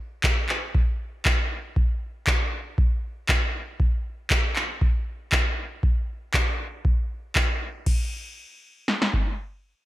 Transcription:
0.24 kick loud
0.24 clap loud
0.49 clap medium
0.75 kick loud
1.25 kick loud
1.25 clap loud
1.76 kick loud
2.27 kick loud
2.27 clap loud
2.78 kick loud
3.29 kick loud
3.29 clap loud
3.80 kick loud
4.30 kick loud
4.30 clap loud
4.56 clap medium
4.81 kick loud
5.32 kick loud
5.32 clap loud
5.83 kick loud
6.34 kick loud
6.34 clap loud
6.85 kick loud
7.35 kick loud
7.35 clap loud
7.86 kick loud
7.86 crash medium
8.88 snare medium
9.02 snare medium
9.14 kick medium

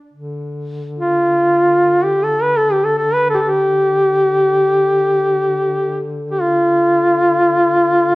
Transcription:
0.13 8.15 D3 soft
0.99 2.06 F4 medium
2.04 2.25 G4 medium
2.23 2.44 A4 medium
2.43 2.58 B4 medium
2.57 2.74 A4 medium
2.72 2.86 G4 medium
2.84 2.97 A4 medium
2.98 3.15 A4 medium
3.14 3.29 B4 medium
3.30 3.36 A4 medium
3.34 3.39 G4 medium
3.34 3.48 A4 medium
3.47 6.07 G4 medium
6.31 6.43 G4 soft
6.42 8.15 F4 medium

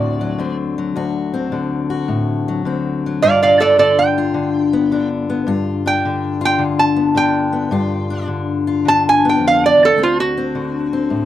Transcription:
0.00 0.95 D2 medium
0.00 0.39 A2 medium
0.00 0.37 D3 medium
0.00 0.38 C4 soft
0.00 0.94 F#4 medium
0.00 0.56 D5 medium
0.21 0.77 F#3 medium
0.38 1.51 D3 medium
0.38 0.94 C4 medium
0.78 2.47 F#3 medium
0.96 3.22 D2 medium
0.96 1.89 F#4 medium
1.34 2.65 C4 medium
1.52 2.64 D3 medium
1.90 3.19 F#4 medium
2.08 2.65 A2 medium
2.48 3.04 F#3 medium
2.65 3.77 D3 medium
2.65 3.20 C4 soft
3.06 3.23 F#3 medium
3.22 5.46 G2 medium
3.22 4.17 F4 medium
3.22 3.41 D5 medium
3.22 3.40 F5 medium
3.43 3.59 D5 medium
3.43 3.60 F5 medium
3.60 4.92 D4 medium
3.60 3.78 A4 medium
3.60 3.78 D5 medium
3.78 4.33 D3 medium
3.78 3.96 A4 medium
3.78 3.97 D5 medium
3.99 5.08 G5 medium
4.18 5.47 F4 medium
4.34 4.90 D3 medium
4.73 5.29 B3 medium
4.91 6.04 D3 medium
4.91 5.85 D4 medium
5.30 5.51 B3 medium
5.47 7.70 G2 medium
5.47 6.41 F4 medium
5.86 7.15 D4 medium
5.86 6.41 G5 medium
6.05 6.57 D3 medium
6.41 7.71 F4 medium
6.45 6.62 G5 loud
6.59 7.14 D3 medium
6.79 7.16 A5 medium
6.96 7.51 B3 medium
7.15 8.26 D3 medium
7.15 8.10 D4 medium
7.15 8.27 G5 loud
7.53 7.70 B3 medium
7.71 9.38 G2 medium
7.71 8.66 F4 medium
8.10 9.96 D4 medium
8.28 8.84 D3 medium
8.67 9.97 F4 medium
8.85 9.97 D3 medium
8.85 9.06 A5 loud
9.09 9.26 G#5 medium
9.25 9.97 B3 medium
9.29 9.45 G5 medium
9.39 9.77 F2 medium
9.48 9.64 F5 medium
9.66 9.82 D5 medium
9.77 9.96 E2 medium
9.85 10.01 A4 medium
9.96 11.25 D2 medium
9.96 10.36 C4 medium
10.03 10.20 F4 medium
10.20 11.25 F#4 medium
10.37 10.92 C4 medium
10.55 11.25 D3 medium
10.93 11.25 C4 medium
11.10 11.25 A2 medium

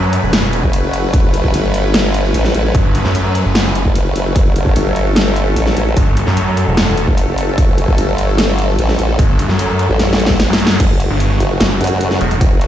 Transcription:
0.00 0.21 F#2 medium
0.00 10.76 F#3 medium
0.00 10.76 A3 medium
0.00 10.76 C#4 medium
0.00 4.34 B4 medium
0.13 closed hi-hat medium
0.23 0.62 E1 loud
0.33 snare loud
0.33 closed hi-hat medium
0.53 closed hi-hat medium
0.63 0.82 F#1 loud
0.63 kick medium
0.73 closed hi-hat medium
0.83 1.12 F#1 loud
0.93 closed hi-hat medium
1.14 1.52 F#1 loud
1.14 kick loud
1.14 closed hi-hat medium
1.34 closed hi-hat medium
1.44 kick medium
1.54 2.33 G1 loud
1.54 closed hi-hat medium
1.74 closed hi-hat medium
1.94 snare loud
1.94 closed hi-hat medium
2.14 closed hi-hat soft
2.34 2.53 A1 loud
2.34 closed hi-hat medium
2.45 snare soft
2.54 2.73 A1 loud
2.54 closed hi-hat medium
2.75 3.03 G1 loud
2.75 kick loud
2.75 closed hi-hat medium
2.95 closed hi-hat medium
3.05 3.44 F#2 medium
3.05 snare soft
3.15 closed hi-hat medium
3.35 closed hi-hat medium
3.45 3.84 F#1 loud
3.55 snare loud
3.55 closed hi-hat medium
3.75 closed hi-hat soft
3.85 4.14 F#1 loud
3.85 kick medium
3.95 closed hi-hat medium
4.16 4.34 F#1 loud
4.16 closed hi-hat medium
4.36 4.74 F#1 loud
4.36 10.78 A4 medium
4.36 kick loud
4.36 closed hi-hat medium
4.56 closed hi-hat medium
4.66 kick medium
4.76 5.55 G1 loud
4.76 closed hi-hat medium
4.96 closed hi-hat medium
5.16 snare loud
5.16 closed hi-hat medium
5.36 closed hi-hat soft
5.56 5.75 A1 medium
5.56 closed hi-hat medium
5.67 snare soft
5.77 5.95 A1 loud
5.77 closed hi-hat medium
5.97 6.25 G1 loud
5.97 kick loud
5.97 closed hi-hat medium
6.17 closed hi-hat medium
6.27 6.66 F#2 loud
6.27 snare soft
6.37 closed hi-hat medium
6.57 closed hi-hat soft
6.67 7.06 E1 loud
6.77 snare loud
6.77 closed hi-hat medium
6.97 closed hi-hat soft
7.08 7.26 F#1 loud
7.08 kick medium
7.18 closed hi-hat medium
7.28 7.56 F#1 loud
7.38 closed hi-hat medium
7.58 7.96 F#1 loud
7.58 kick loud
7.58 closed hi-hat medium
7.78 closed hi-hat medium
7.88 kick medium
7.98 8.77 G1 loud
7.98 closed hi-hat medium
8.18 closed hi-hat medium
8.38 snare loud
8.38 closed hi-hat medium
8.59 closed hi-hat soft
8.79 8.97 A1 loud
8.79 closed hi-hat medium
8.89 snare soft
8.99 9.17 A1 loud
8.99 closed hi-hat medium
9.19 9.48 G1 loud
9.19 kick loud
9.19 closed hi-hat medium
9.39 closed hi-hat medium
9.49 9.88 F#2 loud
9.49 snare soft
9.59 closed hi-hat medium
9.79 closed hi-hat medium
9.89 10.28 A1 loud
9.99 snare medium
9.99 closed hi-hat medium
10.13 snare medium
10.20 closed hi-hat medium
10.26 10.48 A1 medium
10.26 kick medium
10.26 snare medium
10.40 snare medium
10.40 closed hi-hat medium
10.50 10.78 F#2 loud
10.50 snare loud
10.60 closed hi-hat medium
10.67 snare loud
10.80 11.09 F#1 loud
10.80 12.67 C#3 medium
10.80 12.67 F#3 medium
10.80 12.67 A3 medium
10.80 12.67 F#4 medium
10.80 kick loud
10.80 closed hi-hat medium
10.80 crash loud
11.00 closed hi-hat medium
11.10 11.39 G1 loud
11.20 closed hi-hat medium
11.40 11.59 F#1 loud
11.40 closed hi-hat medium
11.60 11.79 F#1 loud
11.60 snare loud
11.60 closed hi-hat medium
11.81 12.19 F#2 medium
11.81 closed hi-hat medium
11.84 closed hi-hat medium
11.87 closed hi-hat medium
12.01 closed hi-hat medium
12.11 snare soft
12.21 12.39 E1 medium
12.21 closed hi-hat medium
12.31 closed hi-hat soft
12.41 12.67 F#1 loud
12.41 kick loud
12.41 closed hi-hat medium
12.61 closed hi-hat medium

